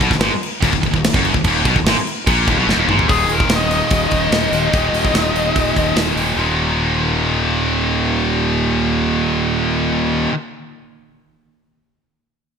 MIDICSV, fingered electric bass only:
0, 0, Header, 1, 2, 480
1, 0, Start_track
1, 0, Tempo, 411523
1, 1685, Time_signature, 4, 2, 24, 8
1, 14678, End_track
2, 0, Start_track
2, 0, Title_t, "Fingered electric bass"
2, 0, Program_c, 0, 33
2, 6, Note_on_c, 0, 35, 104
2, 115, Note_off_c, 0, 35, 0
2, 122, Note_on_c, 0, 27, 80
2, 215, Note_off_c, 0, 27, 0
2, 222, Note_on_c, 0, 32, 98
2, 346, Note_off_c, 0, 32, 0
2, 727, Note_on_c, 0, 27, 107
2, 839, Note_off_c, 0, 27, 0
2, 852, Note_on_c, 0, 27, 88
2, 954, Note_off_c, 0, 27, 0
2, 961, Note_on_c, 0, 27, 77
2, 1075, Note_off_c, 0, 27, 0
2, 1085, Note_on_c, 0, 27, 84
2, 1309, Note_off_c, 0, 27, 0
2, 1330, Note_on_c, 0, 30, 93
2, 1551, Note_off_c, 0, 30, 0
2, 1565, Note_on_c, 0, 27, 80
2, 1671, Note_off_c, 0, 27, 0
2, 1678, Note_on_c, 0, 27, 108
2, 1904, Note_off_c, 0, 27, 0
2, 1925, Note_on_c, 0, 35, 94
2, 2036, Note_off_c, 0, 35, 0
2, 2049, Note_on_c, 0, 27, 79
2, 2136, Note_off_c, 0, 27, 0
2, 2143, Note_on_c, 0, 32, 113
2, 2264, Note_off_c, 0, 32, 0
2, 2643, Note_on_c, 0, 34, 98
2, 2866, Note_off_c, 0, 34, 0
2, 2884, Note_on_c, 0, 27, 91
2, 2995, Note_off_c, 0, 27, 0
2, 3001, Note_on_c, 0, 35, 102
2, 3103, Note_off_c, 0, 35, 0
2, 3110, Note_on_c, 0, 30, 100
2, 3227, Note_off_c, 0, 30, 0
2, 3232, Note_on_c, 0, 27, 96
2, 3348, Note_off_c, 0, 27, 0
2, 3358, Note_on_c, 0, 32, 97
2, 3582, Note_off_c, 0, 32, 0
2, 3608, Note_on_c, 0, 27, 95
2, 3788, Note_off_c, 0, 27, 0
2, 3827, Note_on_c, 0, 27, 93
2, 4015, Note_off_c, 0, 27, 0
2, 4065, Note_on_c, 0, 27, 96
2, 4437, Note_off_c, 0, 27, 0
2, 4560, Note_on_c, 0, 27, 92
2, 4743, Note_off_c, 0, 27, 0
2, 4803, Note_on_c, 0, 27, 81
2, 4985, Note_off_c, 0, 27, 0
2, 5024, Note_on_c, 0, 27, 79
2, 5213, Note_off_c, 0, 27, 0
2, 5275, Note_on_c, 0, 27, 84
2, 5460, Note_off_c, 0, 27, 0
2, 5522, Note_on_c, 0, 27, 89
2, 5705, Note_off_c, 0, 27, 0
2, 5746, Note_on_c, 0, 27, 92
2, 5935, Note_off_c, 0, 27, 0
2, 5992, Note_on_c, 0, 27, 98
2, 6179, Note_off_c, 0, 27, 0
2, 6234, Note_on_c, 0, 27, 76
2, 6420, Note_off_c, 0, 27, 0
2, 6486, Note_on_c, 0, 27, 86
2, 6668, Note_off_c, 0, 27, 0
2, 6723, Note_on_c, 0, 27, 82
2, 6906, Note_off_c, 0, 27, 0
2, 6946, Note_on_c, 0, 27, 68
2, 7136, Note_off_c, 0, 27, 0
2, 7190, Note_on_c, 0, 27, 75
2, 7379, Note_off_c, 0, 27, 0
2, 7423, Note_on_c, 0, 27, 78
2, 11968, Note_off_c, 0, 27, 0
2, 14678, End_track
0, 0, End_of_file